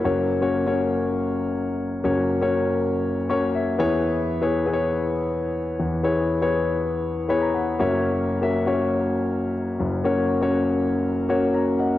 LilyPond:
<<
  \new Staff \with { instrumentName = "Grand piano" } { \time 4/4 \key fis \mixolydian \tempo 4 = 120 << { r1 | r2 r8 cis'''8 e''4 | r1 | r2 r8 b''16 ais''16 fis''8 e''8 |
r1 | r2. <fis'' ais''>8 <dis'' fis''>8 | } \\ { <ais cis' fis' cis''>8. <ais cis' fis' cis''>8 <ais cis' fis' cis''>4.~ <ais cis' fis' cis''>16 r4 | <ais cis' fis' cis''>8. <ais cis' fis' cis''>4. r16 <ais cis' fis' cis''>4 <b e' gis' cis''>8~ | <b e' gis' cis''>8 r16 <b e' gis' cis''>8 <b e' gis' b' cis''>4.~ <b e' gis' b' cis''>16 r4 | <b e' gis' cis''>8. <b e' gis' cis''>4. r16 <b e' gis' cis''>4 <ais cis' fis' cis''>8~ |
<ais cis' fis' cis''>8 r16 <ais cis' fis' e''>8 <ais cis' fis' cis''>4.~ <ais cis' fis' cis''>16 r4 | <ais cis' fis' cis''>8. <ais cis' fis' cis''>4. r16 <ais cis' fis' cis''>4~ <ais cis' fis' cis''>16 r16 | } >> }
  \new Staff \with { instrumentName = "Grand piano" } { \clef bass \time 4/4 \key fis \mixolydian <fis,, fis,>1 | <fis,, fis,>2.~ <fis,, fis,>8 <e, e>8~ | <e, e>2.~ <e, e>8 <e, e>8~ | <e, e>2.~ <e, e>8 <fis,, fis,>8~ |
<fis,, fis,>2.~ <fis,, fis,>8 <fis,, fis,>8~ | <fis,, fis,>2.~ <fis,, fis,>8 r8 | }
>>